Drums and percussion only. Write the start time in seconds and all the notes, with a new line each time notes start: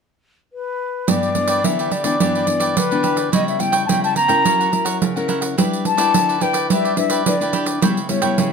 1.08 pandeiro
1.23 pandeiro
1.35 pandeiro
1.48 pandeiro
1.64 pandeiro
1.79 pandeiro
1.91 pandeiro
2.04 pandeiro
2.20 pandeiro
2.35 pandeiro
2.47 pandeiro
2.60 pandeiro
2.77 pandeiro
2.92 pandeiro
3.04 pandeiro
3.17 pandeiro
3.33 pandeiro
3.48 pandeiro
3.60 pandeiro
3.73 pandeiro
3.89 pandeiro
4.04 pandeiro
4.16 pandeiro
4.29 pandeiro
4.45 pandeiro
4.61 pandeiro
4.73 pandeiro
4.86 pandeiro
5.02 pandeiro
5.17 pandeiro
5.29 pandeiro
5.42 pandeiro
5.58 pandeiro
5.73 pandeiro
5.85 pandeiro
5.98 pandeiro
6.14 pandeiro
6.29 pandeiro
6.41 pandeiro
6.54 pandeiro
6.70 pandeiro
6.85 pandeiro
6.97 pandeiro
7.10 pandeiro
7.26 pandeiro
7.41 pandeiro
7.53 pandeiro
7.66 pandeiro
7.82 pandeiro
7.97 pandeiro
8.09 pandeiro
8.22 pandeiro
8.38 pandeiro